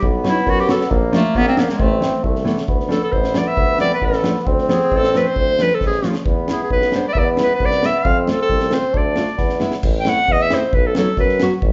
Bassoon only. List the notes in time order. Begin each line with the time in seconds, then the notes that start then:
0.03 B3
0.91 A#3
1.80 C4
2.23 A3
2.68 B3
4.46 C4
6.27 B3
7.16 B3
8.05 C4
8.94 D4
9.38 B3